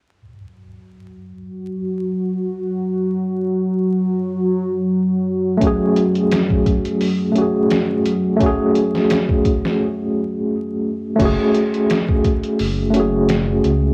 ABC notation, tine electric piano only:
X:1
M:4/4
L:1/8
Q:"Swing 16ths" 1/4=86
K:F#m
V:1 name="Tine electric piano"
z8 | z8 | [A,CFG]4- [A,CFG] [A,CFG]3 | [A,CFG]4 z4 |
[A,CFG]4- [A,CFG] [A,CFG]3 |]